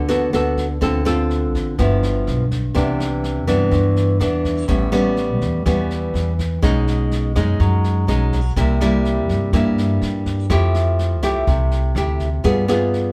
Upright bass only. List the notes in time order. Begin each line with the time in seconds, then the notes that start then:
Already playing: D2
0.33 D2
0.82 D2
1.55 A1
1.78 G1
2.27 B1
2.75 C2
3.48 G2
3.72 G2
4.20 E2
4.69 A1
5.42 E2
5.66 E2
6.14 E2
6.63 B1
7.36 F#2
7.60 F#2
8.07 B1
8.56 C2
9.29 G2
9.53 G2
10.01 G2
10.50 F2
11.23 C2
11.47 C2
11.95 D2
12.45 G2